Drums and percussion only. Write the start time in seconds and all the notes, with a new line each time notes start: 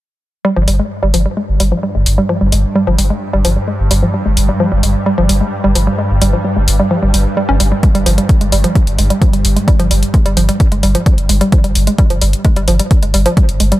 0.68 open hi-hat
1.14 open hi-hat
1.60 open hi-hat
2.06 open hi-hat
2.52 open hi-hat
2.99 open hi-hat
3.45 open hi-hat
3.91 open hi-hat
4.37 open hi-hat
4.83 open hi-hat
5.29 open hi-hat
5.75 open hi-hat
6.22 open hi-hat
6.68 open hi-hat
7.14 open hi-hat
7.60 open hi-hat
7.83 kick, closed hi-hat
7.95 closed hi-hat
8.06 open hi-hat
8.18 closed hi-hat
8.29 kick, closed hi-hat
8.41 closed hi-hat
8.52 open hi-hat
8.64 closed hi-hat
8.75 kick, closed hi-hat
8.87 closed hi-hat
8.99 open hi-hat
9.10 closed hi-hat
9.22 kick, closed hi-hat
9.33 closed hi-hat
9.45 open hi-hat
9.57 closed hi-hat
9.68 kick, closed hi-hat
9.80 closed hi-hat
9.91 open hi-hat
10.03 closed hi-hat
10.14 kick, closed hi-hat
10.26 closed hi-hat
10.37 open hi-hat
10.49 closed hi-hat
10.60 kick, closed hi-hat
10.72 closed hi-hat
10.83 open hi-hat
10.95 closed hi-hat
11.06 kick, closed hi-hat
11.18 closed hi-hat
11.29 open hi-hat
11.41 closed hi-hat
11.52 kick, closed hi-hat
11.64 closed hi-hat
11.75 open hi-hat
11.87 closed hi-hat
11.98 kick, closed hi-hat
12.10 closed hi-hat
12.21 open hi-hat
12.33 closed hi-hat
12.45 kick, closed hi-hat
12.56 closed hi-hat
12.68 open hi-hat
12.79 closed hi-hat
12.91 kick, closed hi-hat
13.03 closed hi-hat
13.14 open hi-hat
13.26 closed hi-hat
13.37 kick, closed hi-hat
13.49 closed hi-hat
13.60 open hi-hat
13.72 closed hi-hat